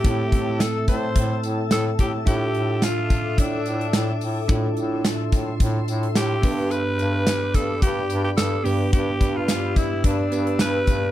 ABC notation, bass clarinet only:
X:1
M:4/4
L:1/16
Q:"Swing 16ths" 1/4=108
K:Gmix
V:1 name="Bass clarinet" clef=bass
A,,2 A,,3 z A,,2 A,,2 A,,2 A,,2 A,,2 | A,,2 A,,3 z3 A,,2 A,,2 A,,2 A,,2 | A,,2 A,,3 z A,,2 A,,2 A,,2 A,,2 G,,2- | G,,2 G,,3 z G,,2 G,,2 G,,2 G,,2 G,,2 |
G,,2 G,,3 z3 G,,2 G,,2 G,,2 G,,2 |]